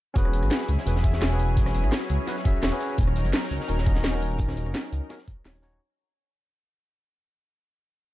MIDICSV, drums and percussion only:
0, 0, Header, 1, 2, 480
1, 0, Start_track
1, 0, Tempo, 352941
1, 215, Time_signature, 4, 2, 24, 8
1, 11061, End_track
2, 0, Start_track
2, 0, Title_t, "Drums"
2, 211, Note_on_c, 9, 42, 84
2, 214, Note_off_c, 9, 42, 0
2, 214, Note_on_c, 9, 36, 122
2, 214, Note_on_c, 9, 42, 96
2, 342, Note_on_c, 9, 37, 58
2, 350, Note_off_c, 9, 36, 0
2, 350, Note_off_c, 9, 42, 0
2, 451, Note_on_c, 9, 42, 66
2, 454, Note_off_c, 9, 42, 0
2, 454, Note_on_c, 9, 42, 75
2, 478, Note_off_c, 9, 37, 0
2, 580, Note_off_c, 9, 42, 0
2, 580, Note_on_c, 9, 42, 45
2, 581, Note_off_c, 9, 42, 0
2, 581, Note_on_c, 9, 37, 35
2, 581, Note_on_c, 9, 42, 38
2, 685, Note_off_c, 9, 42, 0
2, 685, Note_on_c, 9, 42, 87
2, 695, Note_off_c, 9, 42, 0
2, 695, Note_on_c, 9, 38, 122
2, 695, Note_on_c, 9, 42, 96
2, 705, Note_off_c, 9, 38, 0
2, 705, Note_on_c, 9, 38, 113
2, 717, Note_off_c, 9, 37, 0
2, 815, Note_off_c, 9, 38, 0
2, 815, Note_on_c, 9, 38, 56
2, 831, Note_off_c, 9, 42, 0
2, 927, Note_on_c, 9, 42, 64
2, 936, Note_off_c, 9, 42, 0
2, 936, Note_on_c, 9, 42, 73
2, 951, Note_off_c, 9, 38, 0
2, 1063, Note_on_c, 9, 38, 40
2, 1072, Note_off_c, 9, 42, 0
2, 1177, Note_on_c, 9, 42, 100
2, 1186, Note_off_c, 9, 42, 0
2, 1186, Note_on_c, 9, 42, 82
2, 1199, Note_off_c, 9, 38, 0
2, 1305, Note_on_c, 9, 38, 51
2, 1322, Note_off_c, 9, 42, 0
2, 1411, Note_on_c, 9, 42, 74
2, 1415, Note_on_c, 9, 36, 108
2, 1416, Note_off_c, 9, 42, 0
2, 1416, Note_on_c, 9, 42, 74
2, 1441, Note_off_c, 9, 38, 0
2, 1539, Note_on_c, 9, 38, 54
2, 1551, Note_off_c, 9, 36, 0
2, 1552, Note_off_c, 9, 42, 0
2, 1648, Note_on_c, 9, 42, 89
2, 1655, Note_off_c, 9, 38, 0
2, 1655, Note_on_c, 9, 38, 127
2, 1656, Note_off_c, 9, 38, 0
2, 1656, Note_off_c, 9, 42, 0
2, 1656, Note_on_c, 9, 38, 115
2, 1656, Note_on_c, 9, 42, 91
2, 1782, Note_off_c, 9, 42, 0
2, 1782, Note_on_c, 9, 42, 37
2, 1792, Note_off_c, 9, 38, 0
2, 1895, Note_off_c, 9, 42, 0
2, 1895, Note_on_c, 9, 42, 66
2, 1897, Note_off_c, 9, 42, 0
2, 1897, Note_on_c, 9, 42, 70
2, 2022, Note_off_c, 9, 42, 0
2, 2022, Note_on_c, 9, 42, 37
2, 2133, Note_off_c, 9, 42, 0
2, 2133, Note_on_c, 9, 42, 97
2, 2135, Note_off_c, 9, 42, 0
2, 2135, Note_on_c, 9, 36, 127
2, 2135, Note_on_c, 9, 42, 96
2, 2255, Note_on_c, 9, 38, 39
2, 2261, Note_on_c, 9, 37, 59
2, 2271, Note_off_c, 9, 36, 0
2, 2271, Note_off_c, 9, 42, 0
2, 2373, Note_on_c, 9, 42, 66
2, 2391, Note_off_c, 9, 38, 0
2, 2397, Note_off_c, 9, 37, 0
2, 2500, Note_off_c, 9, 42, 0
2, 2500, Note_on_c, 9, 37, 36
2, 2500, Note_on_c, 9, 42, 38
2, 2612, Note_off_c, 9, 42, 0
2, 2612, Note_on_c, 9, 38, 127
2, 2612, Note_on_c, 9, 42, 95
2, 2615, Note_off_c, 9, 38, 0
2, 2615, Note_on_c, 9, 38, 124
2, 2616, Note_off_c, 9, 42, 0
2, 2616, Note_on_c, 9, 42, 104
2, 2636, Note_off_c, 9, 37, 0
2, 2747, Note_off_c, 9, 42, 0
2, 2747, Note_on_c, 9, 42, 43
2, 2751, Note_off_c, 9, 38, 0
2, 2849, Note_off_c, 9, 42, 0
2, 2849, Note_on_c, 9, 42, 65
2, 2852, Note_off_c, 9, 42, 0
2, 2852, Note_on_c, 9, 42, 75
2, 2988, Note_off_c, 9, 42, 0
2, 3094, Note_on_c, 9, 37, 36
2, 3094, Note_on_c, 9, 38, 38
2, 3094, Note_on_c, 9, 42, 98
2, 3105, Note_off_c, 9, 42, 0
2, 3105, Note_on_c, 9, 42, 98
2, 3215, Note_off_c, 9, 38, 0
2, 3215, Note_on_c, 9, 38, 36
2, 3230, Note_off_c, 9, 37, 0
2, 3241, Note_off_c, 9, 42, 0
2, 3335, Note_on_c, 9, 36, 114
2, 3335, Note_on_c, 9, 42, 71
2, 3341, Note_off_c, 9, 42, 0
2, 3341, Note_on_c, 9, 42, 71
2, 3351, Note_off_c, 9, 38, 0
2, 3471, Note_off_c, 9, 36, 0
2, 3477, Note_off_c, 9, 42, 0
2, 3574, Note_on_c, 9, 38, 114
2, 3574, Note_on_c, 9, 42, 91
2, 3576, Note_off_c, 9, 42, 0
2, 3576, Note_on_c, 9, 42, 100
2, 3583, Note_off_c, 9, 38, 0
2, 3583, Note_on_c, 9, 38, 127
2, 3700, Note_off_c, 9, 42, 0
2, 3700, Note_on_c, 9, 42, 38
2, 3719, Note_off_c, 9, 38, 0
2, 3816, Note_off_c, 9, 42, 0
2, 3816, Note_on_c, 9, 42, 64
2, 3819, Note_off_c, 9, 42, 0
2, 3819, Note_on_c, 9, 42, 61
2, 3823, Note_on_c, 9, 38, 33
2, 3942, Note_off_c, 9, 42, 0
2, 3942, Note_on_c, 9, 42, 37
2, 3959, Note_off_c, 9, 38, 0
2, 4053, Note_off_c, 9, 42, 0
2, 4053, Note_on_c, 9, 42, 100
2, 4054, Note_off_c, 9, 42, 0
2, 4054, Note_on_c, 9, 42, 91
2, 4055, Note_on_c, 9, 36, 124
2, 4182, Note_on_c, 9, 37, 56
2, 4190, Note_off_c, 9, 42, 0
2, 4191, Note_off_c, 9, 36, 0
2, 4295, Note_on_c, 9, 42, 67
2, 4305, Note_off_c, 9, 42, 0
2, 4305, Note_on_c, 9, 42, 75
2, 4318, Note_off_c, 9, 37, 0
2, 4420, Note_off_c, 9, 42, 0
2, 4420, Note_on_c, 9, 37, 34
2, 4420, Note_on_c, 9, 42, 36
2, 4432, Note_off_c, 9, 42, 0
2, 4432, Note_on_c, 9, 42, 42
2, 4534, Note_off_c, 9, 42, 0
2, 4534, Note_on_c, 9, 38, 126
2, 4534, Note_on_c, 9, 42, 91
2, 4542, Note_off_c, 9, 42, 0
2, 4542, Note_on_c, 9, 42, 84
2, 4546, Note_off_c, 9, 38, 0
2, 4546, Note_on_c, 9, 38, 126
2, 4556, Note_off_c, 9, 37, 0
2, 4665, Note_off_c, 9, 38, 0
2, 4665, Note_on_c, 9, 38, 55
2, 4678, Note_off_c, 9, 42, 0
2, 4774, Note_on_c, 9, 42, 69
2, 4788, Note_off_c, 9, 42, 0
2, 4788, Note_on_c, 9, 42, 63
2, 4801, Note_off_c, 9, 38, 0
2, 4903, Note_on_c, 9, 38, 40
2, 4924, Note_off_c, 9, 42, 0
2, 5005, Note_on_c, 9, 42, 79
2, 5015, Note_off_c, 9, 42, 0
2, 5015, Note_on_c, 9, 42, 100
2, 5039, Note_off_c, 9, 38, 0
2, 5140, Note_on_c, 9, 38, 51
2, 5151, Note_off_c, 9, 42, 0
2, 5249, Note_on_c, 9, 42, 65
2, 5256, Note_on_c, 9, 36, 111
2, 5257, Note_off_c, 9, 42, 0
2, 5257, Note_on_c, 9, 42, 69
2, 5276, Note_off_c, 9, 38, 0
2, 5374, Note_on_c, 9, 38, 53
2, 5392, Note_off_c, 9, 36, 0
2, 5393, Note_off_c, 9, 42, 0
2, 5492, Note_off_c, 9, 38, 0
2, 5492, Note_on_c, 9, 38, 120
2, 5492, Note_on_c, 9, 42, 97
2, 5497, Note_off_c, 9, 38, 0
2, 5497, Note_off_c, 9, 42, 0
2, 5497, Note_on_c, 9, 38, 118
2, 5497, Note_on_c, 9, 42, 86
2, 5623, Note_off_c, 9, 42, 0
2, 5623, Note_on_c, 9, 42, 35
2, 5633, Note_off_c, 9, 38, 0
2, 5738, Note_on_c, 9, 46, 77
2, 5742, Note_off_c, 9, 42, 0
2, 5742, Note_on_c, 9, 42, 73
2, 5866, Note_off_c, 9, 42, 0
2, 5866, Note_on_c, 9, 42, 37
2, 5874, Note_off_c, 9, 46, 0
2, 5964, Note_off_c, 9, 42, 0
2, 5964, Note_on_c, 9, 42, 87
2, 5975, Note_on_c, 9, 36, 125
2, 5976, Note_off_c, 9, 42, 0
2, 5976, Note_on_c, 9, 42, 86
2, 6098, Note_on_c, 9, 38, 44
2, 6104, Note_on_c, 9, 37, 54
2, 6111, Note_off_c, 9, 36, 0
2, 6112, Note_off_c, 9, 42, 0
2, 6211, Note_on_c, 9, 42, 75
2, 6216, Note_off_c, 9, 42, 0
2, 6216, Note_on_c, 9, 42, 64
2, 6234, Note_off_c, 9, 38, 0
2, 6240, Note_off_c, 9, 37, 0
2, 6342, Note_off_c, 9, 42, 0
2, 6342, Note_on_c, 9, 37, 35
2, 6342, Note_on_c, 9, 42, 37
2, 6443, Note_off_c, 9, 42, 0
2, 6443, Note_on_c, 9, 42, 99
2, 6448, Note_on_c, 9, 38, 115
2, 6458, Note_off_c, 9, 38, 0
2, 6458, Note_off_c, 9, 42, 0
2, 6458, Note_on_c, 9, 38, 127
2, 6458, Note_on_c, 9, 42, 90
2, 6478, Note_off_c, 9, 37, 0
2, 6584, Note_off_c, 9, 42, 0
2, 6584, Note_on_c, 9, 42, 45
2, 6594, Note_off_c, 9, 38, 0
2, 6698, Note_off_c, 9, 42, 0
2, 6698, Note_on_c, 9, 42, 67
2, 6702, Note_off_c, 9, 42, 0
2, 6702, Note_on_c, 9, 42, 67
2, 6838, Note_off_c, 9, 42, 0
2, 6934, Note_on_c, 9, 42, 82
2, 6939, Note_off_c, 9, 42, 0
2, 6939, Note_on_c, 9, 37, 34
2, 6939, Note_on_c, 9, 38, 41
2, 6939, Note_on_c, 9, 42, 92
2, 7054, Note_off_c, 9, 38, 0
2, 7054, Note_on_c, 9, 38, 36
2, 7075, Note_off_c, 9, 37, 0
2, 7075, Note_off_c, 9, 42, 0
2, 7176, Note_on_c, 9, 36, 115
2, 7178, Note_on_c, 9, 42, 65
2, 7186, Note_off_c, 9, 42, 0
2, 7186, Note_on_c, 9, 42, 64
2, 7190, Note_off_c, 9, 38, 0
2, 7312, Note_off_c, 9, 36, 0
2, 7322, Note_off_c, 9, 42, 0
2, 7414, Note_on_c, 9, 42, 93
2, 7416, Note_on_c, 9, 38, 127
2, 7417, Note_off_c, 9, 38, 0
2, 7417, Note_off_c, 9, 42, 0
2, 7417, Note_on_c, 9, 38, 117
2, 7417, Note_on_c, 9, 42, 90
2, 7544, Note_off_c, 9, 42, 0
2, 7544, Note_on_c, 9, 42, 36
2, 7553, Note_off_c, 9, 38, 0
2, 7654, Note_off_c, 9, 42, 0
2, 7654, Note_on_c, 9, 42, 63
2, 7656, Note_on_c, 9, 38, 34
2, 7656, Note_on_c, 9, 46, 79
2, 7784, Note_off_c, 9, 42, 0
2, 7784, Note_on_c, 9, 42, 37
2, 7792, Note_off_c, 9, 38, 0
2, 7792, Note_off_c, 9, 46, 0
2, 7920, Note_off_c, 9, 42, 0
2, 11061, End_track
0, 0, End_of_file